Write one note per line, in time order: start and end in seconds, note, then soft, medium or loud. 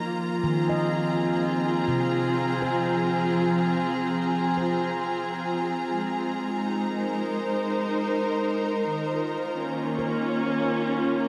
0.00 0.12 D#3 medium
0.00 0.63 F3 soft
0.00 2.04 A#3 medium
0.00 7.16 F4 medium
0.00 11.28 A#5 medium
0.12 5.97 F3 medium
0.44 2.08 D#3 medium
0.44 7.17 C4 medium
0.44 7.16 G#4 medium
0.69 2.82 D#5 medium
1.88 5.33 C3 soft
2.62 4.56 C5 medium
4.57 8.05 C5 soft
5.98 8.91 G#3 medium
6.46 10.09 D#4 medium
6.91 10.08 A#4 medium
6.91 10.08 C5 medium
8.92 11.28 D#3 medium
9.06 11.28 F4 medium
9.55 11.28 A#3 medium
9.55 11.28 C#4 medium
9.99 11.28 A#4 medium